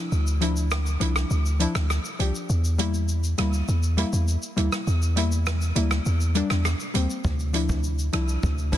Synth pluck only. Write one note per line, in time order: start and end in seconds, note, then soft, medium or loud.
0.41 0.53 F3 medium
0.41 0.54 D4 medium
0.41 0.54 E4 loud
1.00 1.12 F3 medium
1.00 1.13 D4 medium
1.00 1.13 E4 loud
1.59 1.72 F3 medium
1.59 1.72 D4 medium
1.59 1.73 E4 loud
2.19 2.31 F3 medium
2.19 2.32 D4 medium
2.19 2.32 G4 medium
2.78 2.91 G3 medium
2.78 2.91 A#3 medium
2.78 2.92 E4 loud
3.38 3.50 G3 medium
3.38 3.51 A#3 medium
3.38 3.51 E4 loud
3.97 4.09 G3 medium
3.97 4.10 A#3 medium
3.97 4.10 E4 loud
4.56 4.69 G3 medium
4.56 4.69 A#3 medium
4.56 4.70 E4 medium
5.16 5.28 G3 medium
5.16 5.29 A#3 medium
5.16 5.29 E4 loud
5.75 5.88 G3 medium
5.75 5.88 A#3 medium
5.75 5.89 E4 medium
6.35 6.47 G3 medium
6.35 6.48 A#3 medium
6.35 6.48 D4 loud
6.94 7.06 G3 medium
6.94 7.07 A#3 medium
6.94 7.07 C4 loud
7.53 7.66 F3 medium
7.53 7.66 D4 medium
7.53 7.67 E4 loud
8.13 8.25 F3 medium
8.13 8.26 D4 medium
8.13 8.26 E4 medium
8.72 8.78 F3 medium
8.72 8.78 D4 medium
8.72 8.78 E4 loud